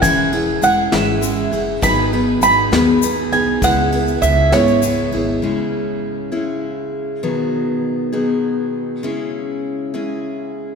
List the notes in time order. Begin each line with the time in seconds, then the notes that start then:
0.02 E1 E3 G#3 C#4 E4 G#4 G#5, kick, ride, shaker
0.32 C#4 E4 G#4, ride
0.62 E1 G#3 C#4 E4 G#4 F#5, ride, shaker
0.92 G#1 E3 G#3 C#4 E4 G#4 E5, snare, ride
1.21 G#3 C#4 E4 G#4, ride, shaker
1.51 F#1 C#4 E4 G#4, ride, shaker
1.81 G#1 G#2 D#3 F#3 B3 D#4 G#4 B5, kick, ride, shaker
2.12 F#3 B3 D#4 G#4, ride
2.41 G#1 F#3 B3 D#4 G#4 B5, ride, shaker
2.72 D#2 G#2 D#3 F#3 B3 D#4 G#4, snare, ride
3.02 F#3 B3 D#4 G#4, ride, shaker
3.32 B1 F#3 B3 D#4 G#4 G#5, ride, shaker
3.62 C#2 C#3 G#3 B3 E4 G#4 F#5, kick, ride, shaker
3.92 B3 E4 G#4, ride
4.08 shaker
4.22 C#2 G#3 B3 E4 G#4 E5, kick, ride, shaker
4.52 G#1 C#3 G#3 B3 E4 G#4 C#5, snare, ride, shaker
4.67 shaker
4.82 G#3 B3 E4 G#4, ride, shaker
5.11 G#1 B3 E4 G#4, ride
5.42 C#3 G#3 C#4 E4 G#4
6.32 C#3 G#3 C#4 E4 G#4
7.23 B2 D#3 F#3 B3 D#4 G#4
8.13 B2 D#3 F#3 B3 D#4 G#4
9.03 C#3 G#3 C#4 E4 G#4
9.94 C#3 G#3 C#4 E4 G#4